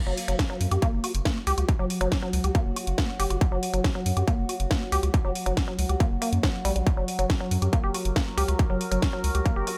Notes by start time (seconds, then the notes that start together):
Already playing: F#3 F#4
0.07 F#1 F#3
0.17 open hi-hat
0.28 F#1 F#3, closed hi-hat
0.39 kick, snare, closed hi-hat
0.50 F#3
0.61 F#2, open hi-hat
0.71 F#2 G4, closed hi-hat
0.82 A#3, kick, closed hi-hat
0.93 F#1
1.04 F#4, open hi-hat
1.15 F#1, closed hi-hat
1.25 A#3, kick, snare, closed hi-hat
1.47 C#2 G4, open hi-hat
1.58 C#2 F#4, closed hi-hat
1.69 kick, closed hi-hat
1.79 F#1 F#3
1.90 open hi-hat
2.01 F#1 F#3, closed hi-hat
2.12 kick, snare, closed hi-hat
2.22 F#3
2.33 C#2, open hi-hat
2.44 C#2 G4, closed hi-hat
2.55 A#3, kick, closed hi-hat
2.66 F#1
2.76 F#4, open hi-hat
2.87 F#1, closed hi-hat
2.98 A#3, kick, snare, closed hi-hat
3.20 F#1 G4, open hi-hat
3.30 F#1 F#4, closed hi-hat
3.41 kick, closed hi-hat
3.52 F#1 F#3
3.63 open hi-hat
3.74 F#1 F#3, closed hi-hat
3.84 kick, snare, closed hi-hat
3.95 F#3
4.06 F#2, open hi-hat
4.17 F#2 G4, closed hi-hat
4.28 A#3, kick, closed hi-hat
4.38 F#1
4.49 F#4, open hi-hat
4.60 F#1, closed hi-hat
4.71 A#3, kick, snare, closed hi-hat
4.92 C#2 G4, open hi-hat
5.03 C#2 F#4, closed hi-hat
5.14 kick, closed hi-hat
5.25 F#1 F#3
5.35 open hi-hat
5.46 F#1 F#3, closed hi-hat
5.57 kick, snare, closed hi-hat
5.68 F#3
5.79 C#2, open hi-hat
5.89 C#2 G4, closed hi-hat
6.00 A#3, kick, closed hi-hat
6.11 F#1
6.22 A#3, open hi-hat
6.33 F#2, closed hi-hat
6.43 F#3, kick, snare, closed hi-hat
6.65 A#1 G3, open hi-hat
6.76 A#1 G3, closed hi-hat
6.87 A#4, kick, closed hi-hat
6.97 F#1 F#3
7.08 open hi-hat
7.19 F#1 F#3, closed hi-hat
7.30 kick, snare, closed hi-hat
7.41 F#3
7.51 F#2, open hi-hat
7.62 F#2 G4, closed hi-hat
7.73 A#3, kick, closed hi-hat
7.84 F#1 G4
7.94 F#4, open hi-hat
8.05 F#1, closed hi-hat
8.16 A#3, kick, snare, closed hi-hat
8.38 C#2 G4, open hi-hat
8.48 C#2 F#4, closed hi-hat
8.59 kick, closed hi-hat
8.70 F#1 F#3
8.81 open hi-hat
8.92 F#1 F#3, closed hi-hat
9.02 kick, snare, closed hi-hat
9.13 F#3
9.24 C#2, open hi-hat
9.35 C#2 G4, closed hi-hat
9.46 A#3, kick, closed hi-hat
9.56 F#1 G4
9.67 F#4, open hi-hat, zap